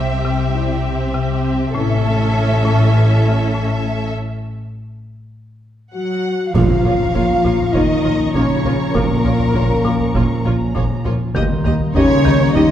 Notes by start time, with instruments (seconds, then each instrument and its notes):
Already playing: double bass section C2, marimba C3, cello section C3, viola section C4, violin section G4 E5
0.25 marimba C3
0.55 marimba C3, french horn section G3 E4
0.85 marimba C4
1.14 marimba C3
1.44 marimba C4
1.75 double bass section A1, marimba A2, cello section A2, french horn section E3 C#4, viola section C#4, violin section A4 E5
2.05 marimba A3
2.36 marimba A2
2.65 marimba A2
2.95 marimba A2, french horn section E3 C#4
3.24 marimba A3
3.54 marimba A2
3.85 marimba A3
5.94 cello section F#3, french horn section F#4, violin section F#5
6.53 double bass section A#1, timpani A#2, marimba A#2, trombone section F3 C#4, cello section F3, viola section A#3 F4, french horn section F4, violin section C#5 F5 A#5 C#6, taiko, impact
6.70 taiko low
6.85 double bass section A#1, marimba A#2, viola section A#3 F4, violin section C#5, taiko low
7.00 taiko low
7.14 double bass section A#1, viola section A#3 F4, marimba A#3, violin section C#5, taiko
7.29 taiko low
7.44 double bass section A#1, marimba A#2, viola section A#3 F4, violin section C#5, taiko low
7.59 taiko low
7.74 double bass section A#1, cello section D#3, marimba A#3, viola section A#3 F4, french horn section D#4, violin section C#5 D#5, taiko
8.04 double bass section A#1, viola section A#3 F4, marimba A#3, violin section C#5, taiko low
8.20 taiko low
8.34 double bass section A#1, marimba A#2, cello section C#3, viola section A#3 F4, french horn section C#4, violin section C#5, taiko
8.65 double bass section A#1, marimba A#2, viola section A#3 F4, violin section C#5, taiko low
8.95 double bass section A#1, marimba A#2, cello section A#2, french horn section A#3, viola section A#3 F4, violin section A#4 C#5, taiko
9.10 taiko low
9.24 double bass section A#1, marimba A#2, viola section A#3 F4, violin section C#5, taiko low
9.39 taiko low
9.54 double bass section A#1, marimba A#3, viola section A#3 F4, violin section C#5, taiko
9.70 taiko low
9.84 double bass section A#1, marimba A#2, viola section A#3 F4, violin section C#5, taiko low
9.99 taiko low
10.15 double bass section A#1, marimba A#3, viola section A#3 F4, violin section C#5, taiko
10.45 double bass section A#1, marimba A#3, viola section A#3 F4, violin section C#5, taiko low
10.60 taiko low
10.74 double bass section A#1, marimba A#2, viola section A#3 F4, violin section C#5, taiko
11.05 double bass section A#1, marimba A#2, viola section A#3 F4, violin section C#5, taiko low
11.34 double bass section D#2, marimba D#3, trombone section G3 A#3, viola section A#3 G4, violin section D#5 A#5 C6, taiko
11.50 taiko low
11.64 double bass section D#2, marimba D#3, viola section A#3 G4, violin section D#5, taiko low
11.80 taiko low
11.94 double bass section D#2, cello section C#3, viola section A#3 G4, french horn section C#4, marimba D#4, violin section C#5 D#5, taiko
12.10 taiko low
12.24 double bass section D#2, marimba D#3, viola section A#3 G4, violin section D#5, taiko low
12.40 taiko low
12.54 double bass section D#2, cello section D#3, viola section A#3 G4, french horn section D#4, marimba D#4, violin section D#5 C#6, taiko